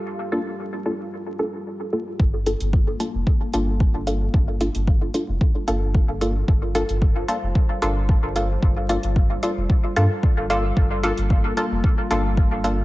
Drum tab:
HH |----------------|--xx--x---x---x-|--xx--x---x---x-|--xx--x---x---x-|
BD |----------------|o---o---o---o---|o---o---o---o---|o---o---o---o---|

HH |--xx--x---x---x-|--xx--x---x---x-|
BD |o---o---o---o---|o---o---o---o---|